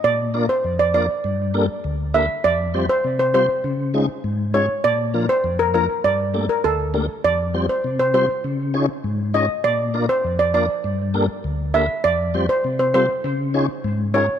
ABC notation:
X:1
M:4/4
L:1/16
Q:1/4=100
K:Gdor
V:1 name="Steel pan"
d z2 c z d d z6 z e z | d z2 c z c c z6 z _d z | d z2 c z B B z d z2 B A3 z | d z2 c z c c z6 z _e z |
d z2 c z d d z6 z e z | d z2 c z c c z6 z _d z |]
V:2 name="Tonewheel organ"
z2 [B,DFBd]2 z2 [B,DFBd]2 z2 [B,DGAB]2 z2 [B,DGAB]2 | z2 [G,CFGc]2 z2 [G,CFGc]2 z2 [_A,_D_EF_A]2 z2 [A,DEFA]2 | z2 [F,B,DFB]2 z2 [F,B,DFB]2 z2 [A,B,DGA]2 z2 [A,B,DGB]2 | z2 [G,CFGc]2 z2 [G,CFGc]2 z2 [_D_EF_A_d]2 z2 [DEFAd]2 |
z2 [B,DFBd]2 z2 [B,DFBd]2 z2 [B,DGAB]2 z2 [B,DGAB]2 | z2 [G,CFGc]2 z2 [G,CFGA]2 z2 [_D_EF_A_d]2 z2 [DEFAB]2 |]
V:3 name="Tonewheel organ" clef=bass
B,,4 F,,4 G,,4 D,,4 | F,,4 C,4 _D,4 _A,,4 | B,,4 F,,4 G,,4 D,,4 | F,,4 C,4 _D,4 _A,,4 |
B,,4 F,,4 G,,4 D,,4 | F,,4 C,4 _D,4 _A,,4 |]